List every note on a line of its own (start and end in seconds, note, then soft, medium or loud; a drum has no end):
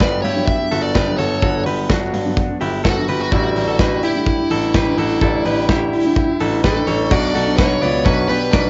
0.00 0.20 G1 medium
0.00 0.35 D3 medium
0.00 0.36 F#3 medium
0.00 0.35 B3 medium
0.00 0.35 D4 medium
0.00 0.23 G4 medium
0.00 0.24 B4 medium
0.00 0.22 D5 loud
0.00 kick loud
0.00 snare loud
0.00 closed hi-hat medium
0.22 0.53 G2 loud
0.22 0.69 E4 medium
0.22 0.69 G4 medium
0.22 0.46 C#5 medium
0.22 open hi-hat medium
0.36 0.60 G2 medium
0.36 0.60 D3 medium
0.36 0.60 F#3 medium
0.36 0.60 B3 medium
0.36 0.59 D4 medium
0.46 0.82 E5 loud
0.46 kick loud
0.60 1.07 F#3 soft
0.60 1.06 B3 soft
0.60 1.06 D4 soft
0.71 0.91 G1 medium
0.71 0.95 F#4 medium
0.71 0.94 A4 medium
0.71 open hi-hat medium
0.83 1.17 D5 medium
0.95 1.15 G1 loud
0.95 1.19 G4 medium
0.95 1.18 B4 medium
0.95 kick loud
0.95 snare loud
0.95 closed hi-hat medium
1.06 1.42 F#3 soft
1.06 1.43 B3 soft
1.06 1.42 D4 medium
1.18 1.38 G1 loud
1.18 1.42 F#4 medium
1.18 1.41 A4 medium
1.18 1.62 C#5 medium
1.18 open hi-hat medium
1.42 1.62 G1 medium
1.42 1.90 G2 medium
1.42 1.90 D3 medium
1.42 1.90 F#3 medium
1.42 1.91 B3 medium
1.42 1.92 D4 medium
1.42 1.66 F#4 medium
1.42 1.66 A4 medium
1.42 kick loud
1.42 closed hi-hat medium
1.66 1.85 G1 medium
1.66 1.89 G4 medium
1.66 1.90 B4 medium
1.66 open hi-hat medium
1.90 2.09 G1 medium
1.90 2.26 D3 medium
1.90 2.26 F#3 medium
1.90 2.25 B3 medium
1.90 2.57 D4 medium
1.90 2.25 D4 medium
1.90 2.57 F#4 medium
1.90 kick loud
1.90 snare loud
2.13 2.43 G2 medium
2.13 open hi-hat medium
2.26 2.50 G2 medium
2.26 2.50 D3 medium
2.26 2.50 F#3 medium
2.26 2.50 B3 medium
2.26 2.49 D4 medium
2.37 kick loud
2.37 closed hi-hat medium
2.50 2.97 F#3 soft
2.50 2.97 B3 medium
2.50 2.97 D4 medium
2.61 2.81 G1 medium
2.61 2.84 E4 medium
2.61 2.84 G4 medium
2.61 open hi-hat medium
2.84 3.04 G1 medium
2.84 3.08 F#4 medium
2.84 3.20 F#4 loud
2.84 3.08 A4 medium
2.84 kick medium
2.84 snare loud
2.84 closed hi-hat medium
2.97 3.33 F#3 soft
2.97 3.33 B3 soft
2.97 3.32 D4 soft
3.08 3.28 G1 medium
3.08 3.33 G4 medium
3.08 3.32 B4 medium
3.08 open hi-hat medium
3.21 3.32 F#4 medium
3.32 3.52 A1 loud
3.32 3.80 A2 medium
3.32 3.78 D3 medium
3.32 3.65 G3 loud
3.32 3.78 G3 medium
3.32 3.80 D4 medium
3.32 3.66 E4 medium
3.32 3.80 E4 medium
3.32 4.04 F#4 loud
3.32 kick loud
3.32 closed hi-hat medium
3.56 3.75 A1 loud
3.56 open hi-hat medium
3.67 3.80 F#4 medium
3.67 3.79 A4 medium
3.79 3.99 A1 medium
3.79 4.15 D3 medium
3.79 4.15 G3 medium
3.79 4.15 D4 medium
3.79 4.14 E4 medium
3.79 4.02 G4 medium
3.79 4.04 B4 medium
3.79 kick loud
3.79 snare loud
3.79 closed hi-hat medium
4.03 4.32 A2 medium
4.03 4.48 E4 medium
4.03 6.60 E4 medium
4.03 4.48 G4 medium
4.03 open hi-hat medium
4.15 4.40 A2 medium
4.15 4.40 D3 medium
4.15 4.39 G3 medium
4.15 4.39 D4 medium
4.15 4.37 E4 medium
4.26 kick medium
4.26 closed hi-hat medium
4.38 4.86 G3 soft
4.38 4.86 D4 soft
4.38 4.84 E4 medium
4.50 4.70 A1 medium
4.50 4.75 F#4 soft
4.50 4.75 A4 medium
4.50 open hi-hat medium
4.74 4.94 A1 medium
4.74 4.99 G4 medium
4.74 4.98 B4 medium
4.74 kick loud
4.74 snare loud
4.74 closed hi-hat medium
4.86 5.21 G3 soft
4.86 5.21 D4 soft
4.86 5.21 E4 medium
4.98 5.17 A1 loud
4.98 5.22 F#4 medium
4.98 5.21 A4 medium
4.98 open hi-hat medium
5.21 5.41 A1 loud
5.21 5.69 A2 medium
5.21 5.69 D3 medium
5.21 5.68 G3 medium
5.21 5.70 D4 loud
5.21 5.46 E4 medium
5.21 5.70 E4 medium
5.21 5.45 A4 loud
5.21 kick loud
5.21 closed hi-hat medium
5.45 5.65 A1 medium
5.45 5.67 G4 medium
5.45 5.69 B4 medium
5.45 open hi-hat medium
5.68 5.88 A1 loud
5.68 6.05 D3 medium
5.68 6.05 G3 medium
5.68 6.05 D4 medium
5.68 6.37 E4 medium
5.68 6.04 E4 medium
5.68 6.36 G4 medium
5.68 kick loud
5.68 snare medium
5.68 closed hi-hat medium
5.93 6.22 A2 medium
5.93 open hi-hat medium
6.05 6.29 A2 medium
6.05 6.29 D3 medium
6.05 6.29 G3 medium
6.05 6.28 D4 medium
6.05 6.27 E4 medium
6.16 kick loud
6.16 closed hi-hat medium
6.28 6.76 G3 soft
6.28 6.76 D4 medium
6.28 6.74 E4 medium
6.40 6.60 A1 loud
6.40 6.64 F#4 medium
6.40 6.63 A4 medium
6.40 open hi-hat medium
6.64 6.83 A1 medium
6.64 6.88 G4 medium
6.64 7.13 A4 loud
6.64 6.87 B4 medium
6.64 7.08 A6 medium
6.64 kick loud
6.64 snare loud
6.64 closed hi-hat medium
6.76 7.12 G3 soft
6.76 7.11 D4 medium
6.76 7.11 E4 medium
6.87 7.07 A1 loud
6.87 7.11 A4 medium
6.87 7.11 C#5 medium
6.87 open hi-hat medium
7.11 7.31 B1 loud
7.11 7.47 B2 medium
7.11 7.47 F#3 medium
7.11 8.70 F#3 loud
7.11 7.47 B3 medium
7.11 8.70 B3 medium
7.11 7.35 D4 medium
7.11 8.70 D4 loud
7.11 7.46 D4 medium
7.11 7.34 F#4 loud
7.11 7.57 D5 loud
7.11 7.55 D7 medium
7.11 kick loud
7.11 crash loud
7.35 7.54 B1 medium
7.35 7.58 F#4 medium
7.35 7.58 A4 medium
7.35 open hi-hat medium
7.47 7.82 F#3 soft
7.47 7.83 B3 medium
7.47 7.82 D4 medium
7.57 7.78 B1 medium
7.57 7.82 F#4 medium
7.57 7.81 B4 medium
7.57 8.06 C#5 loud
7.57 8.02 C#7 medium
7.57 kick loud
7.57 snare loud
7.57 ride medium
7.82 8.01 C#2 loud
7.82 8.28 B2 medium
7.82 8.30 F#3 medium
7.82 8.30 B3 medium
7.82 8.30 D4 medium
7.82 8.06 B4 medium
7.82 8.05 D5 medium
7.82 open hi-hat medium
8.05 8.25 B1 loud
8.05 8.30 F#4 medium
8.05 8.27 B4 loud
8.05 8.29 C#5 medium
8.05 8.28 B6 medium
8.05 kick loud
8.05 hi-hat pedal medium
8.05 ride soft
8.29 8.49 B2 medium
8.29 8.52 B2 medium
8.29 8.52 F#3 medium
8.29 8.53 B3 medium
8.29 8.54 D4 medium
8.29 8.53 G4 medium
8.29 8.51 B4 loud
8.29 8.53 B4 medium
8.29 8.51 B6 medium
8.29 open hi-hat medium
8.52 8.70 B1 medium
8.52 8.65 B2 medium
8.52 8.65 F#3 medium
8.52 8.64 B3 medium
8.52 8.63 D4 medium
8.52 8.70 B4 loud
8.52 8.70 B4 medium
8.52 8.70 D5 medium
8.52 8.70 B6 medium
8.52 kick loud
8.52 snare loud
8.52 hi-hat pedal medium
8.52 ride medium
8.64 8.70 F#3 soft
8.64 8.70 B3 medium
8.64 8.70 D4 medium